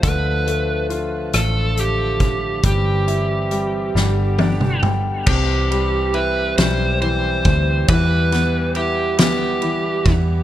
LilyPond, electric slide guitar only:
\new Staff \with { instrumentName = "Electric slide guitar" } { \time 6/8 \key c \major \tempo 4. = 46 b'4 r8 a'8 g'4 | g'2~ g'8 r8 | g'4 b'8 c''8 c''4 | b'4 g'8 g'4 r8 | }